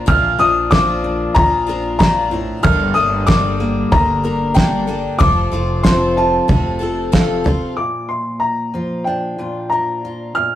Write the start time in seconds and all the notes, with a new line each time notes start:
Already playing: F3 D4 A#4 A#5
0.06 A#1 A#2 F3 C4 D4 F4 F6, kick, floor tom
0.38 A#1 C4 D4 F4 D#6
0.71 A#2 F3 C4 D4 F4 D6, kick, snare
1.04 D4
1.35 A#1 A#2 F3 C4 D4 F4 A#5, kick, floor tom
1.67 C4 D4 F4 A#4
1.99 A#2 F3 C4 D4 F4 A#5, kick, snare
2.31 A2 C4 D4 F4
2.63 G1 G2 D3 G3 A#3 D4 A4 F6, kick, floor tom
2.94 G1 G3 A#3 D4 A4 D#6
3.27 G2 D3 G3 A#3 D4 A4 D6, kick, snare
3.60 A#3
3.92 G1 D3 G3 A#3 D4 A#5, kick, floor tom
4.24 G3 A#3 D4 A#4
4.54 G2 D3 G3 A#3 D4 A4 G5, kick, snare
4.87 G3 A#3 D4 A4
5.19 F1 F2 C3 F3 A3 C4 A4 D6, kick, floor tom
5.52 F1 F3 A3 C4 F4 A4
5.83 F2 C3 F3 A3 C4 A4 C6, kick, snare
6.17 F4 A5
6.48 F1 C3 F3 A3 C4 A4, kick, floor tom
6.79 F3 A3 C4 A4
7.12 F2 C3 F3 A3 C4 A4 F5, kick, snare
7.44 F3 A3 C4 F4 A4, floor tom
7.77 A#2 D6
8.09 C6
8.40 A#5
8.74 F3 F4
9.04 D4 G5
9.38 A#2 F4
9.70 D4 A#5
10.05 F4
10.35 A#2 F6